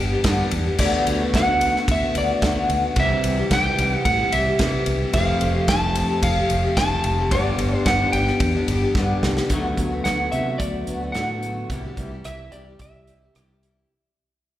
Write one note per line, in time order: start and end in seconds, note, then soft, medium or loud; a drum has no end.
0.00 0.14 G1 medium
0.00 0.77 G2 medium
0.00 0.78 D3 medium
0.00 0.12 G3 medium
0.00 0.78 G3 loud
0.00 0.12 B3 medium
0.00 0.78 B3 medium
0.00 0.78 D4 medium
0.00 0.12 D4 medium
0.00 0.79 G4 medium
0.00 0.11 G4 medium
0.00 0.49 G5 medium
0.12 0.25 G3 medium
0.12 0.25 B3 medium
0.12 0.26 D4 medium
0.12 0.25 G4 medium
0.24 0.41 G2 medium
0.24 0.66 G2 medium
0.24 0.66 D3 loud
0.24 0.66 G3 medium
0.24 0.66 B3 medium
0.24 0.67 D4 medium
0.24 0.65 G4 medium
0.24 kick loud
0.24 snare loud
0.24 ride loud
0.51 0.69 E2 medium
0.51 ride medium
0.67 0.81 G3 soft
0.67 0.81 B3 soft
0.67 0.80 D4 soft
0.67 0.80 G4 medium
0.78 0.96 D2 loud
0.78 1.07 D3 medium
0.78 1.06 F#3 medium
0.78 1.08 A3 medium
0.78 1.08 B3 medium
0.78 1.08 F#4 medium
0.78 1.36 D5 medium
0.78 kick loud
0.78 crash loud
1.07 1.23 D2 medium
1.07 1.21 F#3 medium
1.07 1.21 A3 medium
1.07 1.22 B3 medium
1.07 ride medium
1.11 1.20 F#4 medium
1.21 1.35 A3 soft
1.21 1.35 B3 soft
1.21 1.34 F#4 medium
1.34 1.67 D2 medium
1.34 1.62 D3 medium
1.34 1.60 F#3 medium
1.34 1.62 A3 medium
1.34 1.63 B3 medium
1.34 1.85 F#5 loud
1.34 kick loud
1.34 snare loud
1.34 ride medium
1.38 1.63 F#4 medium
1.61 1.75 F#3 medium
1.61 1.76 A3 medium
1.61 1.76 B3 medium
1.61 1.74 F#4 medium
1.61 ride medium
1.75 2.04 A3 soft
1.75 2.03 B3 medium
1.75 2.01 F#4 medium
1.75 snare soft
1.88 2.05 D2 medium
1.88 2.15 E5 medium
1.88 kick loud
1.88 ride loud
2.02 2.16 A3 soft
2.02 2.16 B3 soft
2.02 2.15 F#4 medium
2.15 2.32 D2 medium
2.15 2.29 F#3 medium
2.15 2.30 A3 medium
2.15 2.30 B3 medium
2.15 2.67 D5 medium
2.15 ride medium
2.19 2.29 F#4 medium
2.30 2.43 A3 soft
2.30 2.44 B3 medium
2.30 2.43 F#4 medium
2.42 2.59 D2 loud
2.42 2.84 D3 medium
2.42 2.84 F#3 medium
2.42 2.84 A3 medium
2.42 2.84 B3 medium
2.42 2.82 F#4 medium
2.42 kick loud
2.42 snare loud
2.42 ride medium
2.69 2.86 D2 loud
2.69 ride medium
2.83 2.98 A3 soft
2.83 2.98 B3 medium
2.83 2.97 F#4 medium
2.96 3.13 C2 medium
2.96 3.24 C3 medium
2.96 3.23 E3 medium
2.96 3.24 G3 medium
2.96 3.25 C4 medium
2.96 3.26 G4 medium
2.96 3.54 E5 medium
2.96 kick loud
2.96 ride loud
3.24 3.40 C2 medium
3.24 3.38 E3 medium
3.24 3.38 G3 medium
3.24 3.38 C4 medium
3.24 3.36 G4 medium
3.24 ride medium
3.37 3.51 G3 soft
3.37 3.52 C4 medium
3.37 3.51 G4 medium
3.51 3.68 C2 medium
3.51 3.78 C3 medium
3.51 3.77 E3 medium
3.51 3.78 G3 medium
3.51 3.79 C4 medium
3.51 3.79 G4 medium
3.51 3.93 G5 loud
3.51 kick loud
3.51 snare loud
3.51 ride loud
3.78 3.95 C2 medium
3.78 3.92 E3 medium
3.78 3.92 G3 medium
3.78 3.93 C4 medium
3.78 3.91 G4 medium
3.78 ride medium
3.92 4.20 G3 soft
3.92 4.19 C4 medium
3.92 4.17 G4 medium
3.92 4.05 F#5 loud
4.05 4.22 A2 loud
4.05 4.33 F#5 loud
4.05 kick loud
4.05 ride loud
4.18 4.32 G3 soft
4.18 4.33 C4 soft
4.18 4.32 G4 medium
4.32 4.49 C2 medium
4.32 4.46 E3 medium
4.32 4.47 G3 medium
4.32 4.46 C4 medium
4.32 4.44 G4 medium
4.32 4.83 E5 medium
4.32 ride medium
4.46 4.60 G3 medium
4.46 4.60 C4 medium
4.46 4.60 G4 medium
4.59 5.00 C3 medium
4.59 4.76 C3 medium
4.59 5.01 E3 medium
4.59 5.01 G3 medium
4.59 5.02 C4 medium
4.59 5.00 G4 medium
4.59 kick loud
4.59 snare loud
4.59 ride medium
4.86 5.04 C2 medium
4.86 ride medium
5.01 5.15 G3 soft
5.01 5.15 C4 medium
5.01 5.15 G4 soft
5.13 5.30 F1 loud
5.13 5.40 F3 medium
5.13 5.41 A3 medium
5.13 5.43 C4 medium
5.13 5.70 F5 medium
5.13 kick loud
5.13 ride loud
5.18 5.43 G4 medium
5.41 5.58 F1 loud
5.41 5.55 F3 medium
5.41 5.55 A3 medium
5.41 5.55 C4 medium
5.41 5.53 G4 medium
5.41 ride medium
5.54 5.68 A3 soft
5.54 5.69 C4 soft
5.54 5.68 G4 medium
5.68 6.01 F1 medium
5.68 5.96 F3 medium
5.68 5.96 A3 medium
5.68 5.96 C4 medium
5.68 5.97 G4 medium
5.68 6.25 A5 loud
5.68 kick loud
5.68 snare loud
5.68 ride loud
5.95 6.10 F3 medium
5.95 6.10 A3 medium
5.95 6.10 C4 medium
5.95 ride medium
5.99 6.08 G4 medium
6.09 6.38 A3 medium
6.09 6.37 C4 medium
6.09 6.35 G4 medium
6.23 6.39 F1 medium
6.23 6.79 F5 medium
6.23 kick loud
6.23 ride loud
6.36 6.50 A3 soft
6.36 6.51 C4 medium
6.36 6.50 G4 medium
6.50 6.67 F1 medium
6.50 6.63 F3 medium
6.50 6.64 A3 medium
6.50 6.64 C4 medium
6.50 6.62 G4 medium
6.50 ride medium
6.64 6.77 A3 soft
6.64 6.78 C4 medium
6.64 6.77 G4 medium
6.77 6.94 F1 medium
6.77 7.18 F3 medium
6.77 7.18 A3 medium
6.77 7.19 C4 medium
6.77 7.17 G4 loud
6.77 7.33 A5 loud
6.77 kick loud
6.77 snare loud
6.77 ride medium
7.04 7.31 F1 medium
7.04 ride medium
7.18 7.32 A3 soft
7.18 7.33 C4 medium
7.18 7.32 G4 medium
7.31 7.48 G1 loud
7.31 7.58 G2 medium
7.31 7.59 D3 medium
7.31 7.57 G3 medium
7.31 7.58 B3 medium
7.31 7.59 D4 medium
7.31 7.60 G4 medium
7.31 7.76 D5 medium
7.31 kick loud
7.31 ride loud
7.58 7.74 G1 medium
7.58 7.72 G3 medium
7.58 7.73 B3 medium
7.58 7.73 D4 medium
7.58 7.71 G4 medium
7.58 ride medium
7.73 7.85 G3 soft
7.73 7.86 B3 medium
7.73 7.87 D4 soft
7.73 7.86 G4 medium
7.73 7.88 C5 medium
7.86 8.02 G1 medium
7.86 8.13 G2 medium
7.86 8.13 D3 medium
7.86 8.12 G3 medium
7.86 8.13 B3 medium
7.86 8.14 D4 medium
7.86 8.14 G4 medium
7.86 8.12 F#5 loud
7.86 kick loud
7.86 snare loud
7.86 ride medium
8.12 8.30 G1 medium
8.12 8.27 G3 medium
8.12 8.27 B3 medium
8.12 8.27 D4 medium
8.12 9.18 G5 medium
8.12 ride medium
8.17 8.25 G4 medium
8.26 8.55 G3 soft
8.26 8.55 B3 soft
8.26 8.55 D4 soft
8.26 8.53 G4 medium
8.26 snare soft
8.40 8.57 E2 medium
8.40 kick loud
8.40 ride loud
8.54 8.67 G3 soft
8.54 8.68 B3 medium
8.54 8.69 D4 medium
8.54 8.68 G4 medium
8.68 8.84 G1 medium
8.68 8.81 G3 medium
8.68 8.82 B3 medium
8.68 8.82 D4 medium
8.68 8.81 G4 medium
8.68 ride medium
8.82 8.96 G3 medium
8.82 8.96 B3 medium
8.82 8.96 D4 medium
8.82 8.95 G4 medium
8.95 9.12 G2 loud
8.95 9.37 G2 medium
8.95 9.37 D3 medium
8.95 9.37 G3 medium
8.95 9.38 B3 medium
8.95 9.38 D4 medium
8.95 9.36 G4 medium
8.95 kick loud
8.95 snare medium
9.23 9.39 C2 medium
9.23 snare loud
9.37 9.51 G3 soft
9.37 9.51 B3 medium
9.37 9.51 D4 medium
9.37 9.50 G4 medium
9.37 snare medium
9.50 9.74 D2 medium
9.50 9.64 D3 medium
9.50 9.64 F#3 medium
9.50 9.64 A3 medium
9.50 9.64 B3 medium
9.50 9.62 F#4 medium
9.50 kick medium
9.50 closed hi-hat medium
9.64 9.78 A3 soft
9.64 9.78 B3 soft
9.64 9.77 F#4 medium
9.77 10.02 D2 medium
9.77 9.91 F#3 medium
9.77 9.91 A3 medium
9.77 9.92 B3 medium
9.77 9.90 F#4 medium
9.77 kick medium
9.77 closed hi-hat medium
9.91 10.05 A3 soft
9.91 10.06 B3 soft
9.91 10.05 F#4 soft
10.04 10.29 D2 medium
10.04 10.32 D3 medium
10.04 10.32 F#3 medium
10.04 10.33 A3 medium
10.04 10.33 B3 medium
10.04 10.33 F#4 medium
10.04 10.31 F#5 medium
10.04 snare medium
10.04 closed hi-hat medium
10.32 10.57 C3 medium
10.32 11.12 D3 medium
10.32 10.46 F#3 medium
10.32 10.47 A3 medium
10.32 10.47 B3 medium
10.32 11.12 F#4 medium
10.32 10.60 E5 medium
10.32 closed hi-hat medium
10.36 10.45 F#4 medium
10.47 10.87 A3 soft
10.47 10.88 B3 soft
10.47 10.87 F#4 medium
10.58 10.84 D2 medium
10.58 11.15 D5 medium
10.58 kick loud
10.58 closed hi-hat medium
10.87 11.12 D2 medium
10.87 11.01 F#3 medium
10.87 11.01 A3 medium
10.87 11.01 B3 medium
10.87 11.00 F#4 medium
10.87 closed hi-hat medium
11.01 11.15 A3 soft
11.01 11.15 B3 soft
11.01 11.14 F#4 soft
11.12 11.63 A2 medium
11.12 11.28 D3 medium
11.12 11.29 F#3 medium
11.12 11.29 A3 medium
11.12 11.51 F#5 medium
11.12 snare medium
11.12 closed hi-hat medium
11.17 11.29 B3 medium
11.17 11.28 F#4 medium
11.29 11.43 A3 soft
11.29 11.43 B3 soft
11.29 11.42 F#4 soft
11.42 11.69 F#3 medium
11.42 11.70 A3 medium
11.42 11.71 B3 medium
11.42 11.71 F#4 medium
11.42 closed hi-hat medium
11.70 11.94 C2 medium
11.70 11.83 C3 medium
11.70 11.84 E3 medium
11.70 11.84 G3 medium
11.70 11.84 E4 medium
11.70 11.82 G4 medium
11.70 kick loud
11.70 closed hi-hat medium
11.83 11.97 G3 soft
11.83 11.98 E4 soft
11.83 11.97 G4 medium
11.97 12.21 C2 medium
11.97 12.10 E3 medium
11.97 12.11 G3 medium
11.97 12.12 E4 medium
11.97 12.10 G4 medium
11.97 kick medium
11.97 closed hi-hat medium
12.11 12.25 G3 soft
12.11 12.25 E4 soft
12.11 12.25 G4 soft
12.24 12.49 C2 medium
12.24 12.52 C3 medium
12.24 12.52 E3 medium
12.24 12.53 G3 medium
12.24 12.53 E4 medium
12.24 12.54 G4 medium
12.24 12.53 E5 loud
12.24 cross-stick medium
12.24 closed hi-hat medium
12.51 12.77 C2 medium
12.51 13.32 C3 medium
12.51 12.66 E3 medium
12.51 12.67 G3 medium
12.51 13.33 G4 medium
12.51 12.78 D5 medium
12.51 closed hi-hat medium
12.55 12.67 E4 medium
12.55 12.65 G4 medium
12.67 13.07 G3 soft
12.67 13.09 E4 soft
12.67 13.07 G4 medium
12.79 13.29 C2 medium
12.79 13.59 E5 medium
12.79 kick loud
12.79 closed hi-hat medium
13.07 13.21 E3 medium
13.07 13.22 G3 medium
13.07 13.22 E4 medium
13.07 13.20 G4 medium
13.07 closed hi-hat medium
13.21 13.35 G3 soft
13.21 13.36 E4 soft
13.21 13.35 G4 soft
13.35 13.85 C2 medium
13.35 13.49 C3 medium
13.35 13.49 E3 medium
13.35 13.49 G3 medium
13.35 13.48 E4 medium
13.35 13.47 G4 medium
13.35 cross-stick medium
13.35 closed hi-hat medium
13.48 13.63 G3 soft
13.48 13.63 E4 soft
13.48 13.62 G4 soft
13.62 13.90 E3 medium
13.62 13.91 G3 medium
13.62 13.91 E4 medium
13.62 13.91 G4 medium
13.62 closed hi-hat medium